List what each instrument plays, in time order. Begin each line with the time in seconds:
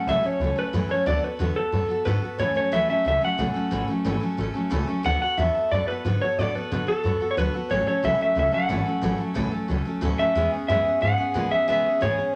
0.06 upright bass B1, steel-string acoustic guitar A2 E3 F#3 A3 C#4 A4, clean electric guitar E5
0.23 steel-string acoustic guitar F#3 A3 C#4 A4, clean electric guitar C#5, muted upright bass stroke
0.39 upright bass C#2, steel-string acoustic guitar F#3 A3 C#4
0.44 steel-string acoustic guitar A4
0.56 steel-string acoustic guitar F#3 A3 C#4 A4, clean electric guitar B4, muted upright bass stroke
0.73 upright bass F#2, steel-string acoustic guitar A2 E3 F#3 A3 C#4 A4
0.89 steel-string acoustic guitar F#3 A3 C#4 A4, clean electric guitar C#5, muted upright bass stroke
1.06 upright bass D2, steel-string acoustic guitar D3 F#3 B3 F#4 A4, clean electric guitar D5
1.22 steel-string acoustic guitar B3 F#4 A4, clean electric guitar B4, muted upright bass stroke
1.39 upright bass E2, steel-string acoustic guitar D3 F#3 B3 F#4 A4
1.55 steel-string acoustic guitar B3 F#4 A4, clean electric guitar A4, muted upright bass stroke
1.72 upright bass F#2, steel-string acoustic guitar F#3 B3 F#4 A4
1.89 steel-string acoustic guitar B3 F#4 A4, muted upright bass stroke
2.05 upright bass G#2, steel-string acoustic guitar D3 F#3 B3 F#4 A4, clean electric guitar B4
2.22 steel-string acoustic guitar B3 F#4 A4, muted upright bass stroke
2.39 steel-string acoustic guitar A2 E3 F#3 A3 C#4 A4, upright bass A2, clean electric guitar C#5
2.54 steel-string acoustic guitar F#3 A3 C#4 A4, clean electric guitar C#5, muted upright bass stroke
2.72 upright bass D2, steel-string acoustic guitar A2 E3 F#3 A3 C#4 A4, clean electric guitar E5
2.88 steel-string acoustic guitar F#3 A3 C#4 A4, clean electric guitar E5, muted upright bass stroke
3.05 upright bass C#2, steel-string acoustic guitar F#3 A3 C#4 A4, clean electric guitar E5
3.21 steel-string acoustic guitar F#3 A3 C#4 A4, clean electric guitar F#5, muted upright bass stroke
3.38 upright bass B1, steel-string acoustic guitar A2 E3 F#3 A3 C#4 A4
3.54 steel-string acoustic guitar F#3 A3 C#4 A4, muted upright bass stroke
3.71 upright bass A1, steel-string acoustic guitar A2 E3 F#3 A3 C#4 A4
3.88 steel-string acoustic guitar F#3 A3 C#4 A4, muted upright bass stroke
4.05 upright bass G#1, steel-string acoustic guitar A2 E3 F#3 A3 C#4 A4
4.20 steel-string acoustic guitar F#3 A3 C#4 A4, muted upright bass stroke
4.37 upright bass A1, steel-string acoustic guitar F#3 A3 C#4 A4
4.54 steel-string acoustic guitar F#3 A3 C#4 A4
4.70 upright bass C#2, steel-string acoustic guitar A2 E3 F#3 A3 C#4 A4
4.86 steel-string acoustic guitar F#3 A3 C#4 A4
5.03 upright bass D2, steel-string acoustic guitar D3 F#3 B3 F#4 A4, clean electric guitar F#5
5.20 steel-string acoustic guitar B3 F#4 A4, clean electric guitar F#5, muted upright bass stroke
5.37 upright bass E2, steel-string acoustic guitar D3 F#3 B3 F#4 A4, clean electric guitar E5
5.54 steel-string acoustic guitar B3 F#4 A4, muted upright bass stroke
5.71 upright bass F#2, steel-string acoustic guitar F#3 B3 F#4 A4, clean electric guitar D5
5.88 steel-string acoustic guitar B3 F#4 A4, clean electric guitar B4, muted upright bass stroke
6.05 upright bass G#2, steel-string acoustic guitar D3 F#3 B3 F#4 A4
6.21 steel-string acoustic guitar B3 F#4 A4, clean electric guitar C#5, muted upright bass stroke
6.38 upright bass A2, steel-string acoustic guitar D3 F#3 B3 F#4 A4, clean electric guitar D5
6.55 steel-string acoustic guitar B3 F#4 A4, clean electric guitar B4, muted upright bass stroke
6.71 upright bass B2, steel-string acoustic guitar D3 F#3 B3 F#4 A4
6.87 steel-string acoustic guitar B3 F#4 A4, clean electric guitar A4, muted upright bass stroke
7.04 upright bass F#2, steel-string acoustic guitar F#3 B3 F#4 A4
7.20 steel-string acoustic guitar B3 F#4 A4, muted upright bass stroke
7.31 clean electric guitar C#5
7.37 upright bass D2, steel-string acoustic guitar D3 F#3 B3 F#4 A4, clean electric guitar B4
7.54 steel-string acoustic guitar B3 F#4 A4, muted upright bass stroke
7.70 upright bass A1, steel-string acoustic guitar A2 E3 F#3 A3 C#4 A4, clean electric guitar C#5
7.87 steel-string acoustic guitar F#3 A3 C#4 A4, clean electric guitar C#5, muted upright bass stroke
8.03 upright bass B1, steel-string acoustic guitar A2 E3 F#3 A3 C#4 A4, clean electric guitar E5
8.19 steel-string acoustic guitar F#3 A3 C#4 A4, clean electric guitar E5, muted upright bass stroke
8.35 upright bass C#2, steel-string acoustic guitar F#3 A3 C#4 A4, clean electric guitar E5
8.52 steel-string acoustic guitar F#3 A3 C#4 A4, clean electric guitar F#5, muted upright bass stroke
8.69 upright bass G#1, steel-string acoustic guitar A2 E3 F#3 A3 C#4 A4
8.86 steel-string acoustic guitar F#3 A3 C#4 A4
9.02 upright bass A1, steel-string acoustic guitar A2 E3 F#3 A3 C#4 A4
9.18 steel-string acoustic guitar F#3 A3 C#4 A4, muted upright bass stroke
9.34 upright bass B1, steel-string acoustic guitar A2 E3 F#3 A3 C#4 A4
9.52 steel-string acoustic guitar F#3 A3 C#4 A4, muted upright bass stroke
9.68 upright bass C#2, steel-string acoustic guitar F#3 A3 C#4 A4
9.85 steel-string acoustic guitar F#3 A3 C#4 A4, muted upright bass stroke
10.01 upright bass D2, steel-string acoustic guitar A2 E3 F#3 A3 C#4 A4
10.18 steel-string acoustic guitar F#3 A3 C#4 A4, clean electric guitar E5, muted upright bass stroke
10.35 upright bass E2, steel-string acoustic guitar E3 G#3 B3 C#4 G#4
10.52 steel-string acoustic guitar B3 C#4 G#4, muted upright bass stroke
10.68 upright bass F#2, steel-string acoustic guitar E3 G#3 B3 C#4 G#4, clean electric guitar E5
10.85 steel-string acoustic guitar B3 C#4 G#4, muted upright bass stroke
11.01 upright bass G#2, steel-string acoustic guitar G#3 B3 C#4 G#4, clean electric guitar F#5
11.18 steel-string acoustic guitar B3 C#4 G#4, muted upright bass stroke
11.34 upright bass A#2, steel-string acoustic guitar E3 G#3 B3 C#4 G#4
11.51 steel-string acoustic guitar B3 C#4 G#4, clean electric guitar E5, muted upright bass stroke
11.68 upright bass B2, steel-string acoustic guitar E3 G#3 B3 C#4 G#4, clean electric guitar E5
11.84 steel-string acoustic guitar B3 C#4 G#4, muted upright bass stroke
12.01 upright bass A2, steel-string acoustic guitar E3 G#3 B3 C#4 G#4, clean electric guitar C#5
12.18 steel-string acoustic guitar B3 C#4 G#4, muted upright bass stroke